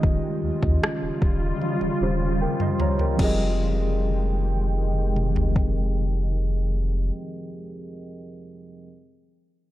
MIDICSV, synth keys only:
0, 0, Header, 1, 2, 480
1, 0, Start_track
1, 0, Key_signature, -4, "minor"
1, 0, Tempo, 789474
1, 20, Time_signature, 4, 2, 24, 8
1, 5906, End_track
2, 0, Start_track
2, 0, Title_t, "Synth keys"
2, 0, Program_c, 0, 88
2, 0, Control_c, 0, 64, 127
2, 0, Note_on_c, 0, 51, 70
2, 0, Note_on_c, 0, 61, 64
2, 0, Note_on_c, 0, 65, 64
2, 0, Note_on_c, 0, 67, 63
2, 0, Note_on_c, 0, 75, 80
2, 1193, Note_off_c, 0, 51, 0
2, 1196, Note_off_c, 0, 61, 0
2, 1199, Note_off_c, 0, 65, 0
2, 1202, Note_off_c, 0, 67, 0
2, 1205, Note_off_c, 0, 75, 0
2, 1222, Note_on_c, 0, 51, 55
2, 1225, Note_on_c, 0, 61, 53
2, 1228, Note_on_c, 0, 65, 50
2, 1231, Note_on_c, 0, 67, 48
2, 1234, Note_on_c, 0, 72, 60
2, 1467, Note_off_c, 0, 72, 0
2, 1467, Note_on_c, 0, 79, 59
2, 1470, Note_on_c, 0, 70, 50
2, 1578, Note_off_c, 0, 79, 0
2, 1579, Note_off_c, 0, 70, 0
2, 1587, Note_on_c, 0, 84, 67
2, 1591, Note_on_c, 0, 75, 57
2, 1698, Note_off_c, 0, 84, 0
2, 1700, Note_off_c, 0, 75, 0
2, 1707, Note_on_c, 0, 82, 59
2, 1710, Note_on_c, 0, 73, 54
2, 1818, Note_off_c, 0, 82, 0
2, 1819, Note_off_c, 0, 73, 0
2, 1827, Note_on_c, 0, 79, 60
2, 1831, Note_on_c, 0, 70, 47
2, 1921, Note_on_c, 0, 53, 76
2, 1933, Note_on_c, 0, 60, 67
2, 1938, Note_off_c, 0, 67, 0
2, 1941, Note_off_c, 0, 51, 0
2, 1942, Note_off_c, 0, 61, 0
2, 1944, Note_off_c, 0, 65, 0
2, 1946, Note_on_c, 0, 67, 68
2, 1949, Control_c, 0, 64, 0
2, 1958, Note_on_c, 0, 68, 70
2, 1970, Note_on_c, 0, 75, 83
2, 2048, Control_c, 0, 64, 127
2, 2052, Note_off_c, 0, 79, 0
2, 2054, Note_off_c, 0, 70, 0
2, 4565, Note_off_c, 0, 53, 0
2, 4577, Note_off_c, 0, 60, 0
2, 4590, Note_off_c, 0, 67, 0
2, 4602, Note_off_c, 0, 68, 0
2, 4614, Note_off_c, 0, 75, 0
2, 5389, Control_c, 0, 64, 0
2, 5906, End_track
0, 0, End_of_file